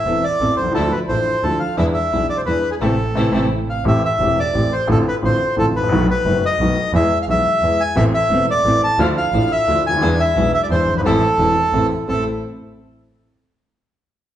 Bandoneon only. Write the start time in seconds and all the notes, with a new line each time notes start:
Already playing: E5
0.24 D5
0.57 C5
0.74 A4
0.92 B4
1.08 C5
1.43 A4
1.60 F5
1.78 E5
1.94 E5
2.30 D5
2.37 C5
2.46 B4
2.71 G#4
2.82 A4
3.70 F5
3.88 E5
4.05 E5
4.40 D5
4.73 C5
4.91 A4
5.08 B4
5.25 C5
5.59 A4
5.76 B4
6.11 B4
6.46 D#5
6.95 E5
7.22 F5
7.30 E5
7.80 G#5
7.96 E5
8.14 E5
8.51 D5
8.84 A5
9.00 F5
9.18 F5
9.52 E5
9.87 G#5
10.20 E5
10.54 E5
10.63 D5
10.71 C5
10.97 B4
11.05 A4
12.09 A4